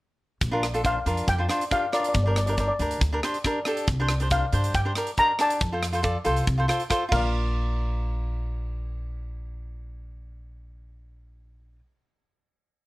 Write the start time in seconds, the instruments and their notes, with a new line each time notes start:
0.41 upright bass A#1, kick, closed hi-hat
0.51 cavaquinho D4 F4 A#4
0.63 cross-stick, closed hi-hat
0.73 cavaquinho D4 F4 A4, closed hi-hat
0.84 cavaquinho D4 F4 C5, steel pan F5, kick, closed hi-hat
1.06 upright bass F2, cavaquinho D4 F4 A#4, closed hi-hat
1.17 closed hi-hat
1.27 upright bass F2, steel pan G5, kick, closed hi-hat
1.38 cavaquinho D4 F4 C5
1.49 cavaquinho D4 F4 C5, cross-stick, closed hi-hat
1.61 closed hi-hat
1.71 cavaquinho D4 F4 G4, steel pan F5, kick, closed hi-hat
1.92 cavaquinho D4 F4 A#4, steel pan D5, cross-stick, closed hi-hat
2.00 steel pan D5, closed hi-hat
2.09 steel pan D5
2.14 upright bass G1, kick, closed hi-hat
2.24 cavaquinho D4 G4 A#4, steel pan D5
2.31 steel pan D5
2.36 steel pan D5, cross-stick, closed hi-hat
2.46 cavaquinho D4 G4 A#4, steel pan D5, closed hi-hat
2.53 steel pan D5
2.57 cavaquinho D4 G4 A#4, steel pan D5, kick, closed hi-hat
2.68 steel pan D5
2.79 upright bass D2, cavaquinho D4 G4 A#4, closed hi-hat
2.91 closed hi-hat
3.01 upright bass D2, kick, closed hi-hat
3.13 cavaquinho D4 G4 A#4
3.23 cavaquinho D4 G4 C5, cross-stick, closed hi-hat
3.34 closed hi-hat
3.44 cavaquinho D4 G4 A#4, kick, cross-stick, closed hi-hat
3.65 cavaquinho D4 G4 A4, cross-stick, closed hi-hat
3.77 closed hi-hat
3.87 upright bass C2, kick, closed hi-hat
4.00 cavaquinho D4 G4 C5
4.09 cross-stick, closed hi-hat
4.20 cavaquinho D4 G4 C5, closed hi-hat
4.30 cavaquinho D4 G4 C5, steel pan F5, kick, closed hi-hat
4.52 upright bass G2, cavaquinho D4 G4 C5, closed hi-hat
4.64 closed hi-hat
4.74 upright bass G2, steel pan G5, kick, closed hi-hat
4.85 cavaquinho D4 G4 C5
4.95 cavaquinho D4 G4 A#4, cross-stick, closed hi-hat
5.07 closed hi-hat
5.17 cavaquinho D4 G4 A#4, steel pan A#5, kick, closed hi-hat
5.39 cavaquinho D4 G4 D5, steel pan A5, cross-stick, closed hi-hat
5.50 closed hi-hat
5.61 upright bass F2, kick, closed hi-hat
5.72 cavaquinho F4 A4 C5
5.83 cross-stick, closed hi-hat
5.93 cavaquinho F4 A4 C5, closed hi-hat
6.02 cavaquinho F4 A4 D5, kick, closed hi-hat
6.24 upright bass C2, cavaquinho F4 A4 C5, closed hi-hat
6.36 closed hi-hat
6.47 upright bass C2, kick, closed hi-hat
6.58 cavaquinho F4 A4 C5
6.68 cavaquinho F4 A4 C5, cross-stick, closed hi-hat
6.80 closed hi-hat
6.90 cavaquinho F4 A4 C5, kick, cross-stick, closed hi-hat
7.09 upright bass A#1, cavaquinho F4 A#4, steel pan F5, kick, crash
7.15 cavaquinho D5